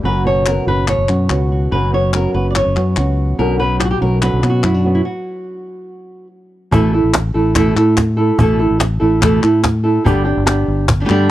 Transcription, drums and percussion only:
0.46 clap medium
0.88 clap medium
1.09 clap medium
1.30 clap medium
2.13 clap medium
2.55 clap medium
2.76 clap medium
2.96 clap medium
3.81 clap medium
4.22 clap medium
4.43 clap medium
4.63 clap medium
6.72 cajon bass medium
7.14 cajon slap loud
7.14 clap medium
7.56 cajon bass medium
7.56 cajon slap soft
7.56 clap medium
7.77 clap medium
7.97 cajon bass medium
7.97 cajon slap medium
7.97 clap medium
8.39 cajon bass medium
8.60 cajon slap soft
8.80 cajon slap medium
8.80 clap medium
9.22 cajon bass medium
9.22 cajon slap soft
9.22 clap loud
9.43 clap medium
9.64 cajon bass medium
9.64 cajon slap loud
9.64 clap medium
10.06 cajon bass medium
10.47 cajon slap loud
10.47 clap medium
10.88 cajon bass medium
10.88 clap medium
11.09 cajon slap soft
11.09 clap medium

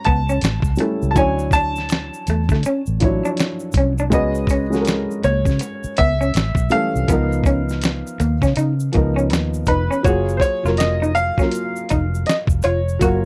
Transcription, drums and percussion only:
0.04 kick medium
0.04 closed hi-hat medium
0.29 shaker soft
0.41 finger snap medium
0.41 snare loud
0.41 closed hi-hat medium
0.41 shaker medium
0.62 kick loud
0.62 shaker soft
0.76 closed hi-hat medium
0.76 shaker soft
1.02 shaker soft
1.16 kick loud
1.16 closed hi-hat medium
1.16 shaker medium
1.39 shaker soft
1.51 kick medium
1.51 closed hi-hat soft
1.51 shaker soft
1.76 snare soft
1.76 shaker soft
1.89 finger snap medium
1.89 snare loud
1.89 closed hi-hat medium
1.89 shaker medium
2.14 shaker soft
2.27 closed hi-hat medium
2.27 shaker soft
2.49 kick medium
2.49 shaker soft
2.53 snare soft
2.63 closed hi-hat medium
2.63 shaker medium
2.86 shaker medium
3.00 kick medium
3.00 closed hi-hat medium
3.25 shaker soft
3.37 finger snap medium
3.37 snare loud
3.37 closed hi-hat medium
3.37 shaker soft
3.60 shaker soft
3.72 kick medium
3.72 closed hi-hat medium
3.72 shaker soft
3.98 shaker soft
4.12 kick loud
4.12 closed hi-hat medium
4.12 shaker medium
4.35 shaker soft
4.47 kick medium
4.47 closed hi-hat soft
4.47 shaker medium
4.73 snare soft
4.73 shaker soft
4.85 finger snap medium
4.85 snare medium
4.85 closed hi-hat medium
4.85 shaker medium
5.11 shaker soft
5.23 closed hi-hat medium
5.23 shaker soft
5.45 kick medium
5.45 shaker soft
5.50 snare soft
5.59 closed hi-hat medium
5.59 shaker medium
5.84 shaker soft
5.97 kick medium
5.97 closed hi-hat medium
6.22 shaker soft
6.34 finger snap medium
6.34 snare loud
6.34 closed hi-hat medium
6.34 shaker medium
6.55 kick medium
6.55 shaker soft
6.69 closed hi-hat medium
6.69 shaker soft
6.96 shaker soft
7.08 kick loud
7.08 closed hi-hat medium
7.08 shaker medium
7.32 shaker soft
7.44 kick medium
7.44 closed hi-hat soft
7.44 shaker soft
7.69 snare soft
7.69 shaker soft
7.81 finger snap medium
7.81 snare loud
7.81 closed hi-hat medium
7.81 shaker medium
8.07 shaker soft
8.20 closed hi-hat medium
8.20 shaker soft
8.42 kick medium
8.42 snare soft
8.42 shaker soft
8.56 closed hi-hat medium
8.56 shaker medium
8.80 shaker soft
8.93 kick medium
8.93 closed hi-hat medium
9.18 shaker soft
9.30 finger snap medium
9.30 snare loud
9.30 closed hi-hat medium
9.30 shaker medium
9.54 shaker soft
9.66 kick medium
9.66 closed hi-hat medium
9.66 shaker soft
9.92 shaker soft
10.04 kick loud
10.04 closed hi-hat medium
10.04 shaker medium
10.29 shaker soft
10.40 kick medium
10.40 closed hi-hat soft
10.40 shaker soft
10.66 snare soft
10.66 shaker soft
10.77 finger snap medium
10.77 snare medium
10.77 closed hi-hat medium
10.77 shaker medium
11.03 shaker soft
11.16 closed hi-hat medium
11.16 shaker soft
11.38 kick medium
11.38 snare soft
11.38 shaker soft
11.51 closed hi-hat medium
11.51 shaker medium
11.76 shaker soft
11.89 kick medium
11.89 closed hi-hat medium
11.89 shaker soft
12.15 shaker soft
12.26 finger snap medium
12.26 snare loud
12.26 closed hi-hat medium
12.26 shaker medium
12.47 kick loud
12.47 shaker soft
12.62 closed hi-hat medium
12.62 shaker soft
12.89 shaker soft
13.01 kick loud
13.01 closed hi-hat medium
13.01 shaker medium

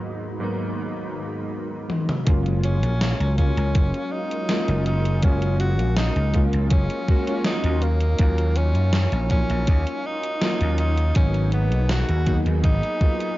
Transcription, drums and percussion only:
1.90 high tom medium
2.09 mid tom medium
2.27 kick loud
2.27 closed hi-hat loud
2.46 closed hi-hat soft
2.63 closed hi-hat medium
2.83 closed hi-hat soft
3.01 snare loud
3.01 closed hi-hat loud
3.20 closed hi-hat soft
3.38 kick medium
3.38 closed hi-hat medium
3.57 closed hi-hat soft
3.75 kick loud
3.75 closed hi-hat loud
3.94 closed hi-hat soft
4.31 closed hi-hat soft
4.49 snare loud
4.49 closed hi-hat medium
4.68 closed hi-hat soft
4.86 closed hi-hat medium
5.05 closed hi-hat soft
5.23 kick loud
5.23 closed hi-hat loud
5.42 closed hi-hat soft
5.60 closed hi-hat medium
5.79 closed hi-hat soft
5.97 snare loud
5.97 closed hi-hat loud
6.16 closed hi-hat soft
6.34 kick medium
6.34 closed hi-hat medium
6.53 closed hi-hat soft
6.71 kick loud
6.71 closed hi-hat loud
6.90 closed hi-hat soft
7.08 kick loud
7.27 closed hi-hat soft
7.44 snare loud
7.44 closed hi-hat medium
7.64 closed hi-hat soft
7.82 closed hi-hat medium
8.01 closed hi-hat soft
8.19 kick loud
8.19 closed hi-hat loud
8.38 closed hi-hat soft
8.56 closed hi-hat medium
8.75 closed hi-hat soft
8.93 snare loud
8.93 closed hi-hat loud
9.12 closed hi-hat soft
9.30 kick medium
9.30 closed hi-hat medium
9.50 closed hi-hat soft
9.67 kick loud
9.67 closed hi-hat loud
9.87 closed hi-hat soft
10.23 closed hi-hat soft
10.42 snare loud
10.42 closed hi-hat medium
10.61 closed hi-hat soft
10.78 closed hi-hat medium
10.97 closed hi-hat soft
11.15 kick loud
11.15 closed hi-hat loud
11.34 closed hi-hat soft
11.52 closed hi-hat medium
11.72 closed hi-hat soft
11.89 snare loud
11.89 closed hi-hat medium
12.09 closed hi-hat soft
12.26 kick medium
12.26 closed hi-hat medium
12.46 closed hi-hat soft
12.64 kick loud
12.64 closed hi-hat medium
12.83 closed hi-hat soft
13.01 kick loud
13.20 closed hi-hat soft

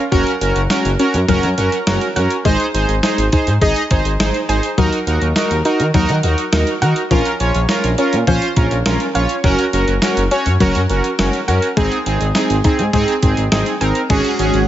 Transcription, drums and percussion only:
0.12 kick loud
0.12 closed hi-hat medium
0.27 closed hi-hat soft
0.41 closed hi-hat medium
0.56 closed hi-hat soft
0.70 snare loud
0.70 closed hi-hat medium
0.85 closed hi-hat medium
0.99 closed hi-hat medium
1.14 closed hi-hat medium
1.28 kick medium
1.28 closed hi-hat medium
1.43 closed hi-hat medium
1.58 closed hi-hat medium
1.72 closed hi-hat soft
1.87 snare loud
1.87 closed hi-hat medium
2.01 closed hi-hat soft
2.16 closed hi-hat medium
2.30 closed hi-hat medium
2.45 kick loud
2.45 closed hi-hat medium
2.60 closed hi-hat soft
2.75 closed hi-hat medium
2.89 closed hi-hat soft
3.03 snare loud
3.03 closed hi-hat medium
3.18 closed hi-hat medium
3.32 kick medium
3.32 closed hi-hat medium
3.47 closed hi-hat medium
3.61 kick medium
3.61 closed hi-hat medium
3.76 closed hi-hat medium
3.91 kick medium
3.91 closed hi-hat medium
4.05 closed hi-hat soft
4.20 snare loud
4.20 closed hi-hat medium
4.34 closed hi-hat soft
4.49 closed hi-hat medium
4.63 closed hi-hat medium
4.78 kick loud
4.78 closed hi-hat medium
4.93 closed hi-hat soft
5.07 closed hi-hat medium
5.22 closed hi-hat soft
5.36 snare loud
5.36 closed hi-hat medium
5.51 closed hi-hat medium
5.65 closed hi-hat medium
5.80 closed hi-hat medium
5.94 kick medium
5.94 closed hi-hat medium
6.09 closed hi-hat medium
6.23 closed hi-hat medium
6.38 closed hi-hat soft
6.53 snare loud
6.53 closed hi-hat medium
6.67 closed hi-hat soft
6.82 closed hi-hat medium
6.96 closed hi-hat medium
7.11 kick loud
7.11 closed hi-hat medium
7.25 closed hi-hat soft
7.40 closed hi-hat medium
7.55 closed hi-hat soft
7.69 snare loud
7.69 closed hi-hat medium
7.84 closed hi-hat medium
7.98 closed hi-hat medium
8.13 closed hi-hat medium
8.27 kick medium
8.27 closed hi-hat medium
8.42 closed hi-hat medium
8.56 kick loud
8.56 closed hi-hat medium
8.71 closed hi-hat soft
8.86 snare loud
8.86 closed hi-hat medium
9.00 closed hi-hat soft
9.15 closed hi-hat medium
9.29 closed hi-hat medium
9.44 kick loud
9.44 closed hi-hat medium
9.59 closed hi-hat soft
9.73 closed hi-hat medium
9.88 closed hi-hat soft
10.02 snare loud
10.02 closed hi-hat medium
10.17 closed hi-hat medium
10.31 closed hi-hat medium
10.46 closed hi-hat medium
10.60 kick medium
10.60 closed hi-hat medium
10.75 closed hi-hat medium
10.90 closed hi-hat medium
11.04 closed hi-hat soft
11.19 snare loud
11.19 closed hi-hat medium
11.33 closed hi-hat soft
11.48 closed hi-hat medium
11.62 closed hi-hat medium
11.77 kick loud
11.77 closed hi-hat medium
11.92 closed hi-hat soft
12.06 closed hi-hat medium
12.21 closed hi-hat soft
12.35 snare loud
12.35 closed hi-hat medium
12.50 closed hi-hat medium
12.64 kick medium
12.64 closed hi-hat medium
12.79 closed hi-hat medium
12.93 kick medium
12.93 closed hi-hat medium
13.08 closed hi-hat medium
13.23 kick loud
13.23 closed hi-hat medium
13.37 closed hi-hat soft
13.52 snare loud
13.52 closed hi-hat medium
13.66 closed hi-hat soft
13.81 closed hi-hat medium
13.95 closed hi-hat medium
14.10 kick loud
14.10 closed hi-hat medium
14.10 crash medium
14.25 closed hi-hat soft
14.39 closed hi-hat medium
14.54 closed hi-hat soft

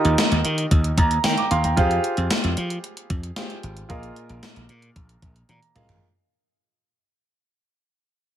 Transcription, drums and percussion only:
0.05 closed hi-hat soft
0.18 snare loud
0.18 closed hi-hat loud
0.18 tambourine medium
0.32 closed hi-hat medium
0.45 closed hi-hat medium
0.58 closed hi-hat medium
0.71 kick medium
0.71 closed hi-hat medium
0.84 closed hi-hat medium
0.98 kick medium
0.98 closed hi-hat medium
1.11 closed hi-hat medium
1.24 snare loud
1.24 closed hi-hat medium
1.24 tambourine medium
1.38 closed hi-hat medium
1.51 closed hi-hat medium
1.64 closed hi-hat medium
1.77 kick loud
1.77 closed hi-hat medium
1.91 closed hi-hat medium
2.04 closed hi-hat medium
2.17 closed hi-hat soft
2.30 snare loud
2.30 closed hi-hat loud
2.30 tambourine medium
2.44 closed hi-hat medium
2.57 closed hi-hat medium
2.70 closed hi-hat medium
2.84 closed hi-hat medium
2.97 closed hi-hat medium
3.10 kick medium
3.10 closed hi-hat medium
3.23 closed hi-hat medium
3.36 snare loud
3.36 closed hi-hat medium
3.36 tambourine medium
3.50 closed hi-hat medium
3.63 closed hi-hat medium
3.77 closed hi-hat medium
3.90 kick loud
3.90 closed hi-hat medium
4.03 closed hi-hat medium
4.16 closed hi-hat medium
4.29 closed hi-hat soft
4.43 snare loud
4.43 closed hi-hat loud
4.43 tambourine medium
4.56 closed hi-hat medium
4.69 closed hi-hat medium
4.82 closed hi-hat medium
4.96 kick loud
4.96 closed hi-hat medium
5.09 closed hi-hat medium
5.22 kick medium
5.22 closed hi-hat medium
5.36 closed hi-hat medium
5.49 closed hi-hat medium
5.49 high tom medium
5.63 closed hi-hat medium
5.76 closed hi-hat medium
5.76 mid tom medium
5.89 closed hi-hat medium
5.89 floor tom loud

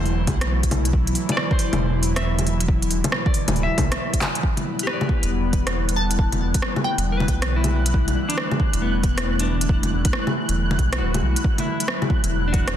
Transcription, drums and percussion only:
0.06 open hi-hat soft
0.27 kick loud
0.27 open hi-hat medium
0.27 low bongo medium
0.41 cross-stick loud
0.41 closed hi-hat medium
0.63 kick medium
0.63 closed hi-hat soft
0.71 open hi-hat medium
0.71 low bongo medium
0.85 closed hi-hat medium
0.93 kick loud
1.07 closed hi-hat soft
1.15 open hi-hat medium
1.29 closed hi-hat medium
1.29 low bongo medium
1.37 cross-stick loud
1.51 kick loud
1.59 open hi-hat medium
1.73 open hi-hat soft
1.73 low bongo medium
2.03 open hi-hat medium
2.16 cross-stick loud
2.16 closed hi-hat medium
2.39 closed hi-hat soft
2.39 low bongo soft
2.47 open hi-hat medium
2.60 closed hi-hat medium
2.68 kick loud
2.82 closed hi-hat soft
2.91 open hi-hat medium
3.04 closed hi-hat medium
3.04 low bongo medium
3.12 cross-stick loud
3.26 kick loud
3.34 open hi-hat medium
3.48 closed hi-hat medium
3.48 low bongo medium
3.56 open hi-hat soft
3.78 kick loud
3.78 open hi-hat medium
3.78 low bongo medium
3.92 cross-stick loud
3.92 closed hi-hat medium
4.14 kick medium
4.14 closed hi-hat soft
4.21 clap medium
4.21 open hi-hat medium
4.21 low bongo medium
4.35 closed hi-hat medium
4.43 kick loud
4.57 closed hi-hat soft
4.57 low bongo soft
4.79 closed hi-hat medium
4.87 cross-stick loud
5.01 low bongo medium
5.09 kick loud
5.23 closed hi-hat medium
5.53 kick loud
5.53 closed hi-hat soft
5.67 cross-stick loud
5.67 closed hi-hat medium
5.89 closed hi-hat soft
6.11 closed hi-hat medium
6.19 kick loud
6.32 closed hi-hat soft
6.32 low bongo soft
6.54 kick loud
6.54 closed hi-hat medium
6.62 cross-stick loud
6.76 low bongo medium
6.98 closed hi-hat medium
7.20 low bongo medium
7.28 kick medium
7.28 closed hi-hat soft
7.42 cross-stick loud
7.42 closed hi-hat medium
7.64 closed hi-hat soft
7.64 low bongo soft
7.86 closed hi-hat medium
7.94 kick loud
8.08 closed hi-hat soft
8.08 low bongo soft
8.30 closed hi-hat medium
8.38 cross-stick loud
8.51 low bongo medium
8.60 kick loud
8.73 closed hi-hat medium
9.03 kick loud
9.03 closed hi-hat soft
9.18 cross-stick loud
9.18 closed hi-hat medium
9.39 closed hi-hat soft
9.61 closed hi-hat medium
9.69 kick loud
9.83 closed hi-hat soft
9.83 low bongo soft
10.05 kick loud
10.05 closed hi-hat medium
10.13 cross-stick loud
10.27 low bongo medium
10.49 closed hi-hat medium
10.71 low bongo medium
10.79 kick medium
10.79 closed hi-hat soft
10.93 cross-stick loud
10.93 closed hi-hat medium
11.14 closed hi-hat soft
11.14 low bongo soft
11.36 closed hi-hat medium
11.44 kick loud
11.58 closed hi-hat soft
11.58 low bongo soft
11.80 closed hi-hat soft
11.88 cross-stick loud
12.02 low bongo medium
12.10 kick loud
12.24 closed hi-hat medium
12.54 kick loud
12.54 closed hi-hat soft
12.68 cross-stick loud
12.68 closed hi-hat medium

